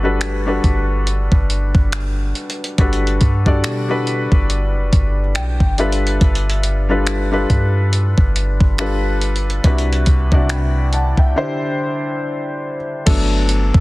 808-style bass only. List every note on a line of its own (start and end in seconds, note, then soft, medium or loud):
0.00 0.60 G1 loud
0.64 1.29 G1 loud
1.32 1.73 G1 medium
1.75 2.33 G1 medium
2.78 3.20 G1 loud
3.21 3.65 G2 loud
3.64 4.28 B2 medium
4.32 4.76 G1 loud
4.75 4.92 F#1 medium
4.93 5.37 G1 loud
5.35 5.59 B1 medium
5.60 6.19 G1 loud
6.21 7.46 G1 loud
7.50 8.15 G2 loud
8.18 8.59 G1 loud
8.60 9.60 G1 loud
9.64 10.05 C2 loud
10.07 10.31 C2 loud
10.32 11.14 C2 loud
11.17 11.35 C2 loud
13.07 13.72 G1 loud
13.74 13.80 G1 loud